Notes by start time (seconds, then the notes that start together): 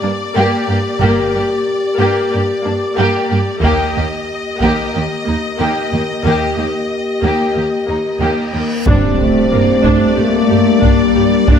Already playing: A#3 G4 D5
0.02 G2 A#3 D4
0.35 G2 A#3 G4
0.68 G2 A#3 G4
1.00 G1 G2 A#3 G4
1.34 G2 A#3 G4
1.98 G2 A#3 G4
2.31 G2 A#3 G4
2.63 G2 A#3 D4
2.96 G2 A#3 G4
3.30 G2 A#3 G4
3.61 D#2 A#3 G4 D#5, taiko
3.94 D#2 A#3 G4
4.59 D#2 A#3 G4, taiko
4.93 D#2 A#3 G4
5.24 D#2 A#3 D#4
5.57 D#2 A#3 G4
5.90 D#2 A#3 G4
6.23 D#2 A#3 G4, reverse cymbal
6.56 D#2 A#3 G4
7.21 D#2 A#3 G4
7.53 D#2 A#3 G4
7.87 D#2 A#3 D#4
8.19 D#2 A#3 G4
8.53 D#2 A#3 G4
8.86 G2 G3 C4 D4 D5, taiko, impact
9.18 A3
9.52 G2 A#3 A#4
9.84 G2 A3 D4, taiko
10.17 G2 A#3 G4
10.49 G2 G4
10.82 G2 G3 D4, taiko
11.15 G2 G4
11.47 G2 A#3 D4, taiko